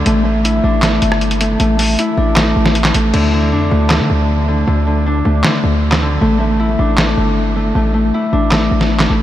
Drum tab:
CC |----------------|----------------|x---------------|----------------|
HH |x---x---x-x-xxx-|x-o-x---x---xxx-|----------------|----------------|
CP |--------x-------|--------x----x--|--------x-------|--------x----x--|
SD |--------o--r----|--------o--o-o--|--------o-------|--------o----o--|

CC |----------------|----------------|
HH |----------------|----------------|
CP |--------x-------|--------x----x--|
SD |--------o-------|--------o--o-o--|